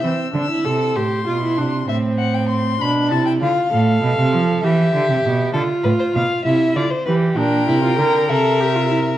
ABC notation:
X:1
M:6/8
L:1/16
Q:3/8=65
K:Cmix
V:1 name="Violin"
e'6 c'6 | e2 _g =g c'2 =b2 a g f2 | z12 | z12 |
g6 e6 |]
V:2 name="Violin"
z12 | z12 | f6 e6 | A2 =B c f2 e2 d c B2 |
B12 |]
V:3 name="Viola"
C2 D E A2 G2 F E D2 | C6 D2 E2 F2 | A6 G6 | F6 E2 F2 G2 |
D2 E F B2 A2 G F E2 |]
V:4 name="Cello" clef=bass
E,2 D,2 C,2 A,,2 =B,,2 C,2 | A,,6 =B,,2 C,2 D,2 | A,,2 =B,, C, F,2 E,2 D, C, B,,2 | D,2 A,,2 =B,,2 C,2 D,2 E,2 |
B,,2 C,2 D,2 C,6 |]